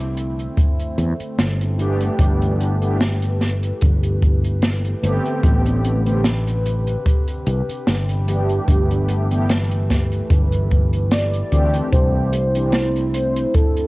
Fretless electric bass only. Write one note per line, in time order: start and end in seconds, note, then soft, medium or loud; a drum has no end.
0.00 0.47 C2 loud
0.98 1.12 E2 loud
1.20 muted fretless electric bass stroke soft
1.38 2.09 G1 medium
2.19 3.71 G1 loud
3.82 4.93 G1 medium
5.03 5.18 G1 loud
5.43 6.95 A1 loud
7.47 7.61 C2 loud
7.69 muted fretless electric bass stroke soft
7.87 8.58 G1 medium
8.68 10.20 G1 loud
10.30 11.42 G1 medium
11.52 11.80 D2 medium
11.93 13.44 C2 loud